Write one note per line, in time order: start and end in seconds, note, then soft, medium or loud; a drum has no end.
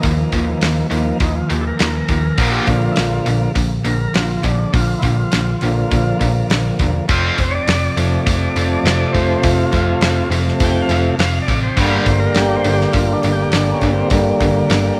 0.01 0.23 D#2 medium
0.01 0.86 D#3 medium
0.01 0.30 D#3 medium
0.01 0.87 F3 medium
0.01 0.87 A#3 medium
0.01 0.30 A#3 medium
0.01 kick loud
0.01 open hi-hat medium
0.05 0.31 D#3 medium
0.05 0.31 F3 medium
0.32 0.52 D#2 medium
0.32 0.59 D#3 medium
0.32 0.60 D#3 medium
0.32 0.60 F3 medium
0.32 0.60 A#3 medium
0.32 kick medium
0.32 open hi-hat medium
0.61 0.81 D#2 medium
0.61 0.89 D#3 medium
0.61 0.89 F3 medium
0.61 0.89 A#3 medium
0.61 snare medium
0.61 open hi-hat medium
0.90 1.11 D#2 medium
0.90 1.18 D#3 medium
0.90 1.17 D#3 soft
0.90 1.18 D#3 medium
0.90 1.18 F3 soft
0.90 1.18 F3 medium
0.90 1.18 A#3 medium
0.90 open hi-hat medium
1.20 1.40 D#2 medium
1.20 1.48 D#3 medium
1.20 1.48 F3 medium
1.20 1.48 A#3 medium
1.20 1.35 D#4 medium
1.20 kick loud
1.20 open hi-hat medium
1.35 1.49 F4 medium
1.50 1.70 D#2 medium
1.50 1.77 D#3 medium
1.50 1.77 F3 medium
1.50 1.77 A#3 medium
1.50 1.65 G4 medium
1.50 open hi-hat medium
1.61 1.65 A4 medium
1.67 2.52 A#4 loud
1.79 1.99 D#2 medium
1.79 2.06 D#3 medium
1.79 2.06 F3 medium
1.79 2.07 A#3 medium
1.79 snare loud
1.79 open hi-hat medium
2.08 2.29 D#2 medium
2.08 2.36 D#3 medium
2.08 2.36 F3 medium
2.08 2.36 A#3 medium
2.08 kick medium
2.08 open hi-hat medium
2.38 2.58 A#1 loud
2.38 2.66 A#2 medium
2.38 2.66 D3 medium
2.38 2.66 F3 loud
2.38 2.67 F3 medium
2.38 2.67 A#3 loud
2.38 kick loud
2.38 open hi-hat medium
2.52 2.66 G4 medium
2.66 2.87 A#1 medium
2.66 2.94 A#2 medium
2.66 2.95 A#2 medium
2.66 3.52 D3 medium
2.66 2.94 D3 medium
2.66 3.52 F3 soft
2.66 2.95 F3 medium
2.66 3.52 A#3 medium
2.66 2.96 F4 medium
2.66 kick medium
2.66 open hi-hat medium
2.92 2.96 E4 medium
2.92 open hi-hat medium
2.97 3.17 A#1 medium
2.97 3.24 A#2 medium
2.97 3.24 D3 medium
2.97 3.24 F3 medium
2.97 3.26 F4 medium
2.97 snare loud
3.26 3.46 A#1 medium
3.26 3.53 A#2 medium
3.26 3.54 A#2 medium
3.26 3.53 D3 medium
3.26 3.54 F3 medium
3.26 open hi-hat medium
3.55 3.75 A#1 medium
3.55 3.82 A#2 soft
3.55 3.83 A#2 medium
3.55 3.83 D3 medium
3.55 3.83 F3 medium
3.55 kick loud
3.55 open hi-hat medium
3.84 4.05 A#1 medium
3.84 4.12 A#2 medium
3.84 4.12 D3 medium
3.84 4.12 F3 medium
3.84 4.14 A#4 medium
3.84 open hi-hat medium
4.14 4.35 A#1 medium
4.14 4.41 A#2 medium
4.14 4.42 A#2 medium
4.14 4.43 D3 medium
4.14 4.41 F3 medium
4.14 4.44 F4 medium
4.14 snare loud
4.14 open hi-hat medium
4.43 4.64 A#1 medium
4.43 4.70 A#2 medium
4.43 4.71 A#2 medium
4.43 4.72 D3 medium
4.43 4.71 F3 medium
4.43 4.73 D4 medium
4.43 kick medium
4.43 open hi-hat soft
4.73 4.93 A#1 loud
4.73 5.00 A#2 medium
4.73 5.01 A#2 medium
4.73 5.01 D3 medium
4.73 5.00 F3 medium
4.73 5.03 F4 loud
4.73 kick loud
4.73 open hi-hat medium
4.99 5.22 A#1 medium
4.99 5.30 A#2 medium
4.99 5.03 E4 medium
4.99 open hi-hat medium
5.03 5.30 A#2 medium
5.03 5.31 D3 medium
5.03 5.30 F3 medium
5.03 6.18 F4 medium
5.03 kick medium
5.32 5.53 A#1 medium
5.32 5.59 A#2 medium
5.32 5.60 A#2 medium
5.32 5.60 D3 medium
5.32 5.59 F3 medium
5.32 snare loud
5.32 open hi-hat medium
5.61 5.82 A#1 medium
5.61 5.89 A#2 medium
5.61 7.05 D3 medium
5.61 5.89 D3 medium
5.61 5.89 F3 medium
5.61 7.06 F3 soft
5.61 7.06 A#3 medium
5.61 open hi-hat medium
5.91 6.11 A#1 medium
5.91 6.18 A#2 medium
5.91 6.18 D3 medium
5.91 6.18 F3 medium
5.91 kick medium
5.91 open hi-hat medium
6.20 6.40 A#1 medium
6.20 6.47 A#2 medium
6.20 6.48 A#2 medium
6.20 6.48 D3 medium
6.20 6.47 F3 medium
6.20 kick medium
6.20 open hi-hat medium
6.50 6.69 A#1 medium
6.50 6.77 A#2 medium
6.50 6.78 A#2 medium
6.50 6.78 D3 medium
6.50 6.77 F3 medium
6.50 snare loud
6.50 open hi-hat medium
6.79 6.99 E1 medium
6.79 7.06 A#2 medium
6.79 7.07 A#2 medium
6.79 7.07 D3 medium
6.79 7.06 F3 medium
6.79 kick medium
6.79 open hi-hat soft
7.08 7.29 F1 medium
7.08 7.36 F2 medium
7.08 7.36 C3 medium
7.08 7.37 F3 loud
7.08 7.37 F3 medium
7.08 7.37 C4 medium
7.08 7.38 F4 loud
7.08 kick loud
7.08 open hi-hat medium
7.37 7.58 F1 medium
7.37 7.64 F2 medium
7.37 7.64 C3 medium
7.37 7.66 F3 medium
7.37 7.65 C4 medium
7.37 7.53 C5 loud
7.37 kick medium
7.37 open hi-hat medium
7.51 7.54 C#5 medium
7.55 8.68 D5 loud
7.67 7.87 F1 medium
7.67 7.94 F2 medium
7.67 7.94 C3 medium
7.67 7.95 F3 medium
7.67 7.95 C4 medium
7.67 snare loud
7.67 open hi-hat medium
7.96 8.16 F1 medium
7.96 8.24 F2 medium
7.96 8.24 C3 medium
7.96 10.28 C3 medium
7.96 8.24 F3 medium
7.96 10.28 F3 soft
7.96 10.27 A3 medium
7.96 8.24 C4 medium
7.96 open hi-hat medium
8.26 8.46 F1 medium
8.26 8.54 F2 medium
8.26 8.54 C3 medium
8.26 8.53 F3 medium
8.26 8.53 C4 medium
8.26 kick loud
8.26 open hi-hat medium
8.56 8.75 F1 medium
8.56 8.82 F2 medium
8.56 8.82 C3 medium
8.56 8.83 F3 medium
8.56 8.83 C4 medium
8.56 open hi-hat medium
8.72 8.80 D5 medium
8.81 9.04 F1 medium
8.81 9.12 F2 medium
8.81 9.12 C3 medium
8.81 9.12 D5 medium
8.86 9.12 F3 medium
8.86 9.12 C4 medium
8.86 snare loud
8.86 open hi-hat medium
9.13 9.34 F1 medium
9.13 9.41 F2 medium
9.13 9.41 C3 medium
9.13 9.41 F3 medium
9.13 9.41 C4 medium
9.13 9.42 C5 medium
9.13 kick medium
9.13 open hi-hat soft
9.42 9.63 F1 medium
9.42 9.70 F2 medium
9.42 9.70 C3 medium
9.42 9.71 F3 medium
9.42 9.71 C4 medium
9.42 9.70 F4 loud
9.42 kick loud
9.42 open hi-hat medium
9.71 9.93 F1 medium
9.71 9.99 F2 medium
9.71 9.99 C3 medium
9.71 10.00 F3 medium
9.71 10.00 C4 medium
9.71 10.29 F4 loud
9.71 kick medium
9.71 open hi-hat medium
10.00 10.21 F1 medium
10.00 10.28 F2 medium
10.00 10.29 C3 medium
10.00 10.29 F3 medium
10.00 10.29 C4 medium
10.00 snare loud
10.00 open hi-hat medium
10.29 10.50 F1 medium
10.29 10.58 F2 medium
10.29 11.15 C3 soft
10.29 10.58 C3 medium
10.29 11.15 F3 soft
10.29 10.58 F3 medium
10.29 11.16 A3 medium
10.29 10.58 C4 medium
10.29 open hi-hat medium
10.48 snare soft
10.60 10.80 F1 medium
10.60 10.87 F2 medium
10.60 10.87 C3 medium
10.60 10.88 F3 medium
10.60 10.88 C4 medium
10.60 10.63 F#5 medium
10.60 10.82 G5 loud
10.60 kick loud
10.60 open hi-hat medium
10.82 11.00 F5 medium
10.89 11.09 F1 medium
10.89 11.16 F2 medium
10.89 11.17 C3 medium
10.89 11.17 F3 medium
10.89 11.17 C4 medium
10.89 open hi-hat medium
11.18 11.38 F1 medium
11.18 11.46 F2 medium
11.18 11.46 C3 medium
11.18 11.46 F3 medium
11.18 11.47 C4 medium
11.18 11.39 F5 medium
11.18 snare loud
11.18 open hi-hat medium
11.42 11.60 D5 medium
11.48 11.68 A1 medium
11.48 11.75 F2 medium
11.48 11.75 C3 medium
11.48 11.76 F3 medium
11.48 11.75 C4 medium
11.48 kick medium
11.48 open hi-hat medium
11.63 11.80 C5 medium
11.76 11.97 G1 medium
11.76 12.05 G2 medium
11.76 12.05 D3 medium
11.76 12.05 D3 loud
11.76 14.09 D3 medium
11.76 12.05 G3 loud
11.76 12.06 G3 loud
11.76 kick loud
11.76 open hi-hat medium
11.81 14.09 G3 medium
11.81 14.10 A#3 medium
11.81 11.99 F5 loud
12.04 12.26 G1 loud
12.04 12.33 G2 medium
12.04 12.34 D3 medium
12.04 12.20 C5 medium
12.04 kick medium
12.04 open hi-hat medium
12.20 12.38 A#4 medium
12.35 12.56 G1 medium
12.35 12.63 G2 medium
12.35 12.63 D3 medium
12.35 12.56 G4 loud
12.35 snare loud
12.35 open hi-hat medium
12.56 12.75 C5 medium
12.64 12.85 G1 medium
12.64 12.92 G2 medium
12.64 12.92 D3 medium
12.64 open hi-hat medium
12.73 12.93 G4 loud
12.80 snare soft
12.93 13.14 G1 medium
12.93 13.21 G2 medium
12.93 13.21 D3 medium
12.93 13.13 F4 medium
12.93 kick medium
12.93 open hi-hat medium
13.13 13.33 D4 medium
13.23 13.43 G1 medium
13.23 13.50 G2 medium
13.23 13.51 G2 medium
13.23 13.51 D3 medium
13.23 open hi-hat medium
13.32 13.52 G4 medium
13.52 13.72 G1 medium
13.52 13.80 G2 medium
13.52 13.80 D3 medium
13.52 13.72 D4 medium
13.52 snare loud
13.52 open hi-hat medium
13.74 13.92 C#4 medium
13.81 14.01 G1 medium
13.81 14.09 G2 medium
13.81 14.09 D3 medium
13.81 kick medium
13.81 open hi-hat soft
13.93 14.12 C4 medium
14.10 14.31 G1 medium
14.10 14.38 G2 medium
14.10 15.00 D3 medium
14.10 14.38 D3 medium
14.10 15.00 G3 medium
14.10 15.00 A#3 loud
14.10 kick loud
14.10 open hi-hat medium
14.40 14.60 G1 medium
14.40 14.67 G2 medium
14.40 14.68 G2 medium
14.40 14.68 D3 medium
14.40 kick medium
14.40 open hi-hat medium
14.70 14.89 G1 medium
14.70 14.96 G2 medium
14.70 14.96 D3 medium
14.70 14.97 D3 medium
14.70 snare loud
14.70 open hi-hat medium